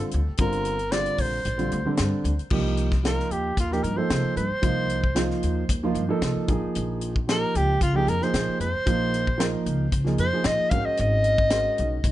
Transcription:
Already playing: D3 G3 C4 F4
0.02 muted upright bass stroke
0.11 D2, closed hi-hat
0.29 muted upright bass stroke
0.37 G1 D3 G3 C4 F4 A#4, kick, closed hi-hat
0.52 closed hi-hat
0.65 closed hi-hat
0.79 closed hi-hat
0.91 D3 G3 C4 F4 D5, snare, closed hi-hat
1.06 closed hi-hat
1.18 A#1 C5, kick, open hi-hat
1.45 A#1, closed hi-hat
1.58 D3 G3 C4 F4, closed hi-hat
1.71 D2, closed hi-hat
1.85 D3 G3 C4 D4
1.97 G2, snare, closed hi-hat
2.13 muted upright bass stroke
2.24 D2, closed hi-hat
2.39 muted upright bass stroke, closed hi-hat
2.50 C2 F3 A#3 D#4 G4, kick, crash
2.77 closed hi-hat
2.92 kick, snare
3.03 F3 A#3 D#4 F4 A#4, snare, closed hi-hat
3.20 snare
3.31 D#2 G4, closed hi-hat
3.57 D#2 F4, kick, closed hi-hat
3.71 F3 A#3 D#4 G4 A#4, snare
3.83 G2 A#4, closed hi-hat
3.96 F3 A#3 D#4 A4 C5
4.10 C3, snare, closed hi-hat
4.24 muted upright bass stroke
4.36 G2 C5, closed hi-hat
4.50 muted upright bass stroke
4.62 C2 F3 A#3 D#4 F4, kick, closed hi-hat
4.89 closed hi-hat
5.04 kick
5.15 F3 A#3 D#4 F4, snare, closed hi-hat
5.31 snare
5.43 D#2, closed hi-hat
5.69 D#2, kick, closed hi-hat
5.83 F3 A#3 D#4 F4
5.95 G2, closed hi-hat
6.09 F3 A#3 D#4 A4
6.22 C3, snare, closed hi-hat
6.36 muted upright bass stroke
6.48 A#1 F3 A#3 D#4 G#4, kick, closed hi-hat
6.63 muted upright bass stroke
6.75 A#1, closed hi-hat
7.01 closed hi-hat
7.16 kick
7.27 F3 A#3 D#4 G4 A#4, snare, closed hi-hat
7.55 C#2 G4, closed hi-hat
7.81 C#2 F4, kick, closed hi-hat
7.94 F3 A#3 D#4 G4 G#4
8.07 F2 A#4, closed hi-hat
8.22 F3 A#3 D#4 G#4 C5, snare
8.34 A#2, snare, closed hi-hat
8.48 muted upright bass stroke
8.60 F2 C5, closed hi-hat
8.75 muted upright bass stroke
8.86 A#1 F3 A#3 D#4 F4, kick, closed hi-hat
9.14 closed hi-hat
9.27 kick
9.38 F3 A#3 D#4 A#4, snare, closed hi-hat
9.66 C#2, closed hi-hat
9.92 C#2, kick, closed hi-hat
10.04 F3 A#3 D#4 G#4, snare
10.18 F2 C5, closed hi-hat
10.33 F3 A#3 D#4 G#4
10.44 A#2 D#5, snare, closed hi-hat
10.60 muted upright bass stroke
10.70 G#1 G#3 C#4 F#4 A#4 F5, kick, closed hi-hat
10.85 D#5, muted upright bass stroke
10.97 G#1 D#5, closed hi-hat
11.24 closed hi-hat
11.38 kick
11.50 G#3 C#4 F#4 A#4, snare, closed hi-hat
11.78 B1, closed hi-hat
12.04 B1, kick, closed hi-hat

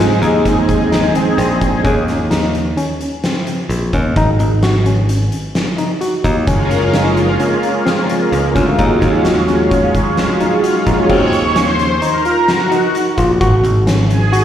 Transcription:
Already playing: G#2 G#3 C4 D#4 G#4
0.22 D#2 D#4, closed hi-hat
0.46 kick, snare, closed hi-hat
0.69 kick, closed hi-hat
0.92 D#4, snare, closed hi-hat
1.15 C4, closed hi-hat
1.38 A#1 C4, closed hi-hat
1.61 kick, closed hi-hat
1.84 D#2 C#4, kick, closed hi-hat
2.08 snare, closed hi-hat
2.31 D#4, snare, closed hi-hat
2.55 closed hi-hat
2.77 C#4, closed hi-hat
3.01 closed hi-hat
3.24 C4, snare, closed hi-hat
3.47 closed hi-hat
3.69 A#1, closed hi-hat
3.93 D#2 C#4, kick, closed hi-hat
4.16 G#1 D#4, kick, closed hi-hat
4.39 G#1 D#4, closed hi-hat
4.63 F#4, snare, closed hi-hat
4.86 C#4, closed hi-hat
5.09 closed hi-hat
5.32 closed hi-hat
5.55 snare, closed hi-hat
5.78 D#4, closed hi-hat
6.01 F#4, closed hi-hat
6.24 D#2 D#4, kick, closed hi-hat
6.47 F#1 G#3 A#3 C#4 F4, kick, closed hi-hat
6.71 closed hi-hat
6.93 D#4, snare, closed hi-hat
7.17 closed hi-hat
7.40 C#4, closed hi-hat
7.63 closed hi-hat
7.86 C4, snare, closed hi-hat
8.10 closed hi-hat
8.32 C#2, closed hi-hat
8.55 D2 C#4, kick, snare, closed hi-hat
8.78 D#2 F#3 G#3 C#4 D#4 F4, kick, closed hi-hat
9.01 D#2 D#4, kick, snare, closed hi-hat
9.25 F#4, snare, closed hi-hat
9.48 C#4, snare, closed hi-hat
9.71 kick, closed hi-hat
9.95 kick, closed hi-hat
10.17 snare, closed hi-hat
10.40 D#4, closed hi-hat
10.63 F#4, closed hi-hat
10.87 A#1 D#4, kick, closed hi-hat
11.09 D#2 C4 C#5, kick, crash
11.33 closed hi-hat
11.56 C#4 C5, snare, closed hi-hat
11.79 closed hi-hat
12.02 D#4 A#4, closed hi-hat
12.25 F4, closed hi-hat
12.48 F#4, snare, closed hi-hat
12.71 D#4, closed hi-hat
12.95 closed hi-hat
13.18 A#1 F4, kick, closed hi-hat
13.41 G#1 F#4, kick, closed hi-hat
13.63 G#1, closed hi-hat
13.87 C#4, snare, closed hi-hat
14.10 G#4, closed hi-hat
14.32 F#4 C#5, closed hi-hat

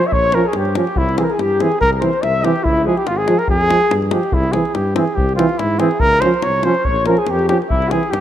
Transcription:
0.04 E5, davul high
0.12 A#1 C#5, davul low
0.24 davul high
0.32 F3 C#4 A#4, davul high
0.45 G#4
0.53 G2 G4, davul high
0.58 G4
0.65 davul high
0.75 F3 C#4 G4, davul high
0.87 davul high
0.96 C2 E4, davul low
1.09 davul high
1.17 E3 C4 G#4 A#4, davul high
1.24 A#4
1.30 G#4, davul high
1.39 G2 G4, davul high
1.60 E3 C4 G#4, davul high
1.72 davul high
1.80 C2 A#4, davul low
1.93 davul high
2.00 E3 C4 C5, davul high
2.13 davul high
2.23 C2 E5, davul high
2.43 E3 C4 G4, davul high
2.56 davul high
2.63 C#2 E4, davul low
2.77 davul high
2.84 F3 G#3 G#4
2.96 G4, davul high
3.07 G#1 F4, davul high
3.17 G#4
3.26 F3 G#3, davul high
3.38 A#4, davul high
3.47 F2 G#4, davul low
3.61 davul high
3.68 F3 G#3, davul high
3.81 davul high
3.91 G2, davul high
4.02 davul high
4.10 F3 G#3 G4, davul high
4.23 davul high
4.32 C2 E4, davul low
4.43 davul high
4.52 E3 C4 G#4, davul high
4.65 davul high
4.74 G2 G4, davul high
4.95 E3 C4 G#4, davul high
5.07 davul high
5.15 C2 G4, davul low
5.29 davul high
5.36 E3 C4 F4, davul high
5.49 davul high
5.58 G#2 E4, davul high
5.79 E3 C4 G#4, davul high
5.91 davul high
6.00 C#2 A#4, davul low
6.13 davul high
6.21 F3 C#4 C5, davul high
6.34 davul high
6.42 C2 C#5, davul high
6.63 F3 C#4 C5, davul high
6.75 davul high
6.85 A#1 C#5, davul low
6.96 davul high
7.06 F3 C#4 A#4, davul high
7.17 G#4, davul high
7.27 F2 G4, davul high
7.31 G4
7.39 davul high
7.48 F3 C#4 G4, davul high
7.62 davul high
7.68 C2 E4, davul low
7.82 davul high
7.90 E3 C4 G#4, davul high
8.03 davul high
8.09 G2 G4, davul high

